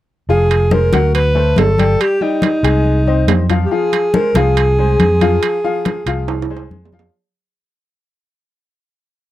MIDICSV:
0, 0, Header, 1, 5, 480
1, 0, Start_track
1, 0, Key_signature, -4, "minor"
1, 0, Tempo, 427960
1, 324, Time_signature, 4, 2, 24, 8
1, 10447, End_track
2, 0, Start_track
2, 0, Title_t, "Alto saxophone"
2, 0, Program_c, 0, 65
2, 338, Note_on_c, 0, 68, 96
2, 822, Note_on_c, 0, 70, 93
2, 839, Note_off_c, 0, 68, 0
2, 1285, Note_off_c, 0, 70, 0
2, 1292, Note_on_c, 0, 71, 88
2, 1778, Note_on_c, 0, 69, 93
2, 1795, Note_off_c, 0, 71, 0
2, 2261, Note_on_c, 0, 67, 97
2, 2278, Note_off_c, 0, 69, 0
2, 2497, Note_on_c, 0, 63, 93
2, 2514, Note_off_c, 0, 67, 0
2, 3930, Note_off_c, 0, 63, 0
2, 4098, Note_on_c, 0, 67, 64
2, 4174, Note_on_c, 0, 68, 95
2, 4191, Note_off_c, 0, 67, 0
2, 4660, Note_on_c, 0, 70, 90
2, 4677, Note_off_c, 0, 68, 0
2, 4901, Note_on_c, 0, 68, 92
2, 4918, Note_off_c, 0, 70, 0
2, 7536, Note_off_c, 0, 68, 0
2, 10447, End_track
3, 0, Start_track
3, 0, Title_t, "Upright piano"
3, 0, Program_c, 1, 0
3, 323, Note_on_c, 1, 53, 67
3, 330, Note_on_c, 1, 65, 68
3, 330, Note_on_c, 1, 77, 70
3, 717, Note_off_c, 1, 53, 0
3, 721, Note_off_c, 1, 65, 0
3, 721, Note_off_c, 1, 77, 0
3, 804, Note_on_c, 1, 68, 61
3, 805, Note_on_c, 1, 56, 57
3, 811, Note_on_c, 1, 72, 62
3, 1000, Note_off_c, 1, 68, 0
3, 1001, Note_off_c, 1, 56, 0
3, 1004, Note_off_c, 1, 72, 0
3, 1037, Note_on_c, 1, 54, 69
3, 1043, Note_on_c, 1, 66, 67
3, 1047, Note_on_c, 1, 78, 70
3, 1433, Note_off_c, 1, 54, 0
3, 1436, Note_off_c, 1, 66, 0
3, 1438, Note_off_c, 1, 78, 0
3, 1513, Note_on_c, 1, 57, 69
3, 1519, Note_on_c, 1, 69, 60
3, 1522, Note_on_c, 1, 72, 61
3, 1910, Note_off_c, 1, 57, 0
3, 1913, Note_off_c, 1, 69, 0
3, 1915, Note_off_c, 1, 72, 0
3, 2002, Note_on_c, 1, 55, 72
3, 2005, Note_on_c, 1, 67, 72
3, 2008, Note_on_c, 1, 79, 71
3, 2395, Note_off_c, 1, 55, 0
3, 2397, Note_off_c, 1, 67, 0
3, 2399, Note_off_c, 1, 79, 0
3, 2478, Note_on_c, 1, 55, 72
3, 2482, Note_on_c, 1, 67, 74
3, 2485, Note_on_c, 1, 79, 75
3, 2873, Note_off_c, 1, 55, 0
3, 2875, Note_off_c, 1, 67, 0
3, 2877, Note_off_c, 1, 79, 0
3, 2956, Note_on_c, 1, 56, 74
3, 2960, Note_on_c, 1, 68, 71
3, 2965, Note_on_c, 1, 80, 75
3, 3352, Note_off_c, 1, 56, 0
3, 3355, Note_off_c, 1, 68, 0
3, 3358, Note_off_c, 1, 80, 0
3, 3445, Note_on_c, 1, 60, 69
3, 3448, Note_on_c, 1, 72, 70
3, 3451, Note_on_c, 1, 75, 68
3, 3838, Note_off_c, 1, 60, 0
3, 3840, Note_off_c, 1, 72, 0
3, 3841, Note_off_c, 1, 75, 0
3, 3923, Note_on_c, 1, 53, 71
3, 3929, Note_on_c, 1, 65, 74
3, 3932, Note_on_c, 1, 77, 75
3, 4120, Note_off_c, 1, 53, 0
3, 4124, Note_off_c, 1, 65, 0
3, 4125, Note_off_c, 1, 77, 0
3, 4161, Note_on_c, 1, 53, 71
3, 4165, Note_on_c, 1, 77, 67
3, 4166, Note_on_c, 1, 65, 70
3, 4556, Note_off_c, 1, 53, 0
3, 4558, Note_off_c, 1, 77, 0
3, 4559, Note_off_c, 1, 65, 0
3, 4637, Note_on_c, 1, 56, 61
3, 4641, Note_on_c, 1, 68, 68
3, 4642, Note_on_c, 1, 72, 59
3, 4837, Note_off_c, 1, 56, 0
3, 4839, Note_off_c, 1, 68, 0
3, 4840, Note_off_c, 1, 72, 0
3, 4887, Note_on_c, 1, 53, 74
3, 4888, Note_on_c, 1, 65, 74
3, 4893, Note_on_c, 1, 77, 80
3, 5280, Note_off_c, 1, 53, 0
3, 5281, Note_off_c, 1, 65, 0
3, 5284, Note_off_c, 1, 77, 0
3, 5367, Note_on_c, 1, 68, 68
3, 5370, Note_on_c, 1, 56, 65
3, 5376, Note_on_c, 1, 72, 64
3, 5760, Note_off_c, 1, 68, 0
3, 5762, Note_off_c, 1, 56, 0
3, 5766, Note_off_c, 1, 72, 0
3, 5846, Note_on_c, 1, 53, 78
3, 5850, Note_on_c, 1, 65, 80
3, 5851, Note_on_c, 1, 77, 73
3, 6240, Note_off_c, 1, 53, 0
3, 6243, Note_off_c, 1, 65, 0
3, 6243, Note_off_c, 1, 77, 0
3, 6328, Note_on_c, 1, 53, 71
3, 6329, Note_on_c, 1, 65, 77
3, 6332, Note_on_c, 1, 77, 78
3, 6721, Note_off_c, 1, 53, 0
3, 6722, Note_off_c, 1, 65, 0
3, 6724, Note_off_c, 1, 77, 0
3, 6808, Note_on_c, 1, 53, 71
3, 6810, Note_on_c, 1, 65, 76
3, 6816, Note_on_c, 1, 77, 75
3, 7201, Note_off_c, 1, 53, 0
3, 7203, Note_off_c, 1, 65, 0
3, 7206, Note_off_c, 1, 77, 0
3, 7293, Note_on_c, 1, 68, 67
3, 7294, Note_on_c, 1, 56, 70
3, 7298, Note_on_c, 1, 72, 73
3, 7684, Note_off_c, 1, 68, 0
3, 7685, Note_off_c, 1, 56, 0
3, 7688, Note_off_c, 1, 72, 0
3, 7768, Note_on_c, 1, 53, 73
3, 7772, Note_on_c, 1, 65, 71
3, 7777, Note_on_c, 1, 77, 71
3, 7964, Note_off_c, 1, 53, 0
3, 7967, Note_off_c, 1, 65, 0
3, 7970, Note_off_c, 1, 77, 0
3, 10447, End_track
4, 0, Start_track
4, 0, Title_t, "Fingered electric bass"
4, 0, Program_c, 2, 33
4, 322, Note_on_c, 2, 29, 93
4, 997, Note_off_c, 2, 29, 0
4, 1043, Note_on_c, 2, 38, 78
4, 1717, Note_off_c, 2, 38, 0
4, 1762, Note_on_c, 2, 31, 81
4, 2186, Note_off_c, 2, 31, 0
4, 2950, Note_on_c, 2, 36, 80
4, 3632, Note_off_c, 2, 36, 0
4, 3667, Note_on_c, 2, 41, 85
4, 4099, Note_off_c, 2, 41, 0
4, 4873, Note_on_c, 2, 36, 86
4, 5555, Note_off_c, 2, 36, 0
4, 5597, Note_on_c, 2, 41, 88
4, 6026, Note_off_c, 2, 41, 0
4, 6798, Note_on_c, 2, 36, 81
4, 7478, Note_off_c, 2, 36, 0
4, 7517, Note_on_c, 2, 41, 85
4, 7946, Note_off_c, 2, 41, 0
4, 10447, End_track
5, 0, Start_track
5, 0, Title_t, "Drums"
5, 326, Note_on_c, 9, 63, 30
5, 438, Note_off_c, 9, 63, 0
5, 564, Note_on_c, 9, 63, 29
5, 571, Note_on_c, 9, 65, 72
5, 676, Note_off_c, 9, 63, 0
5, 683, Note_off_c, 9, 65, 0
5, 800, Note_on_c, 9, 63, 90
5, 912, Note_off_c, 9, 63, 0
5, 1039, Note_on_c, 9, 63, 93
5, 1049, Note_on_c, 9, 65, 59
5, 1151, Note_off_c, 9, 63, 0
5, 1162, Note_off_c, 9, 65, 0
5, 1278, Note_on_c, 9, 63, 33
5, 1288, Note_on_c, 9, 65, 83
5, 1390, Note_off_c, 9, 63, 0
5, 1400, Note_off_c, 9, 65, 0
5, 1516, Note_on_c, 9, 63, 35
5, 1628, Note_off_c, 9, 63, 0
5, 1754, Note_on_c, 9, 63, 79
5, 1771, Note_on_c, 9, 65, 69
5, 1771, Note_on_c, 9, 66, 71
5, 1866, Note_off_c, 9, 63, 0
5, 1883, Note_off_c, 9, 65, 0
5, 1883, Note_off_c, 9, 66, 0
5, 1998, Note_on_c, 9, 63, 63
5, 2013, Note_on_c, 9, 65, 66
5, 2110, Note_off_c, 9, 63, 0
5, 2125, Note_off_c, 9, 65, 0
5, 2237, Note_on_c, 9, 63, 32
5, 2252, Note_on_c, 9, 65, 82
5, 2349, Note_off_c, 9, 63, 0
5, 2364, Note_off_c, 9, 65, 0
5, 2477, Note_on_c, 9, 63, 29
5, 2589, Note_off_c, 9, 63, 0
5, 2713, Note_on_c, 9, 63, 79
5, 2726, Note_on_c, 9, 65, 69
5, 2825, Note_off_c, 9, 63, 0
5, 2839, Note_off_c, 9, 65, 0
5, 2966, Note_on_c, 9, 65, 74
5, 3079, Note_off_c, 9, 65, 0
5, 3196, Note_on_c, 9, 63, 33
5, 3308, Note_off_c, 9, 63, 0
5, 3439, Note_on_c, 9, 63, 34
5, 3552, Note_off_c, 9, 63, 0
5, 3679, Note_on_c, 9, 63, 76
5, 3682, Note_on_c, 9, 65, 86
5, 3682, Note_on_c, 9, 66, 73
5, 3791, Note_off_c, 9, 63, 0
5, 3794, Note_off_c, 9, 65, 0
5, 3794, Note_off_c, 9, 66, 0
5, 3921, Note_on_c, 9, 63, 64
5, 3921, Note_on_c, 9, 65, 66
5, 4033, Note_off_c, 9, 63, 0
5, 4033, Note_off_c, 9, 65, 0
5, 4162, Note_on_c, 9, 63, 30
5, 4274, Note_off_c, 9, 63, 0
5, 4404, Note_on_c, 9, 63, 34
5, 4407, Note_on_c, 9, 65, 76
5, 4516, Note_off_c, 9, 63, 0
5, 4520, Note_off_c, 9, 65, 0
5, 4641, Note_on_c, 9, 63, 91
5, 4754, Note_off_c, 9, 63, 0
5, 4880, Note_on_c, 9, 63, 92
5, 4885, Note_on_c, 9, 65, 61
5, 4992, Note_off_c, 9, 63, 0
5, 4997, Note_off_c, 9, 65, 0
5, 5117, Note_on_c, 9, 63, 34
5, 5126, Note_on_c, 9, 65, 83
5, 5229, Note_off_c, 9, 63, 0
5, 5238, Note_off_c, 9, 65, 0
5, 5368, Note_on_c, 9, 63, 34
5, 5480, Note_off_c, 9, 63, 0
5, 5605, Note_on_c, 9, 63, 78
5, 5605, Note_on_c, 9, 65, 67
5, 5717, Note_off_c, 9, 63, 0
5, 5717, Note_off_c, 9, 65, 0
5, 5846, Note_on_c, 9, 63, 64
5, 5848, Note_on_c, 9, 65, 65
5, 5959, Note_off_c, 9, 63, 0
5, 5960, Note_off_c, 9, 65, 0
5, 6086, Note_on_c, 9, 65, 80
5, 6090, Note_on_c, 9, 63, 30
5, 6198, Note_off_c, 9, 65, 0
5, 6202, Note_off_c, 9, 63, 0
5, 6331, Note_on_c, 9, 63, 34
5, 6443, Note_off_c, 9, 63, 0
5, 6565, Note_on_c, 9, 65, 68
5, 6571, Note_on_c, 9, 63, 83
5, 6677, Note_off_c, 9, 65, 0
5, 6683, Note_off_c, 9, 63, 0
5, 6804, Note_on_c, 9, 65, 82
5, 6916, Note_off_c, 9, 65, 0
5, 7042, Note_on_c, 9, 63, 33
5, 7045, Note_on_c, 9, 65, 94
5, 7154, Note_off_c, 9, 63, 0
5, 7157, Note_off_c, 9, 65, 0
5, 7205, Note_on_c, 9, 65, 66
5, 7289, Note_on_c, 9, 63, 32
5, 7317, Note_off_c, 9, 65, 0
5, 7364, Note_on_c, 9, 65, 83
5, 7401, Note_off_c, 9, 63, 0
5, 7476, Note_off_c, 9, 65, 0
5, 7528, Note_on_c, 9, 63, 82
5, 7641, Note_off_c, 9, 63, 0
5, 7688, Note_on_c, 9, 66, 65
5, 7765, Note_on_c, 9, 63, 65
5, 7800, Note_off_c, 9, 66, 0
5, 7842, Note_on_c, 9, 66, 92
5, 7877, Note_off_c, 9, 63, 0
5, 7954, Note_off_c, 9, 66, 0
5, 10447, End_track
0, 0, End_of_file